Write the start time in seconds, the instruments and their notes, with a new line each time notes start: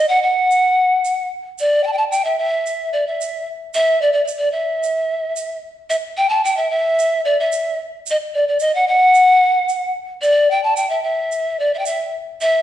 0.09 pan flute F#5
0.22 pan flute F#5
0.51 shaker
1.05 shaker
1.58 pan flute D5, shaker
1.84 pan flute G5 A5
1.93 pan flute G5
1.98 pan flute A5
2.11 pan flute G5, shaker
2.25 pan flute E5
2.39 pan flute E5
2.66 shaker
2.93 pan flute D5
3.07 pan flute E5
3.21 shaker
3.74 pan flute E5, shaker
4.02 pan flute D5
4.13 pan flute D5
4.24 pan flute D5, shaker
4.38 pan flute D5
4.52 pan flute E5
4.83 shaker
5.36 shaker
5.90 pan flute E5, shaker
6.17 pan flute G5
6.29 pan flute A5
6.44 pan flute G5, shaker
6.57 pan flute E5
6.70 pan flute E5
6.99 shaker
7.25 pan flute D5
7.40 pan flute E5
7.52 shaker
8.06 shaker
8.11 pan flute D#5
8.35 pan flute D5
8.48 pan flute D5
8.60 pan flute D#5, shaker
8.75 pan flute F#5
8.88 pan flute F#5
9.15 shaker
9.69 shaker
10.22 pan flute D5, shaker
10.51 pan flute G5
10.64 pan flute A5
10.76 pan flute G5, shaker
10.90 pan flute E5
11.03 pan flute E5
11.32 shaker
11.59 pan flute D5
11.74 pan flute E5
11.79 pan flute G5
11.86 pan flute E5, shaker
12.41 pan flute E5, shaker